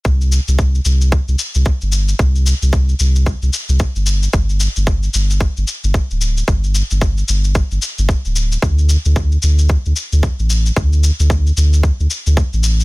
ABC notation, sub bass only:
X:1
M:4/4
L:1/16
Q:"Swing 16ths" 1/4=112
K:C
V:1 name="Sub bass" clef=bass
C,,2 z C,,2 z C,,2 z C,, z C,, z G,,,2 z | C,,2 z C,,2 z C,,2 z C,, z C,, z G,,,2 z | G,,,2 z G,,,2 z G,,,2 z G,,, z G,,, z D,,,2 z | G,,,2 z G,,,2 z G,,,2 z G,,, z G,,, z D,,,2 z |
D,,2 z D,,2 z D,,2 z D,, z D,, z A,,,2 z | D,,2 z D,,2 z D,,2 z D,, z D,, z A,,,2 z |]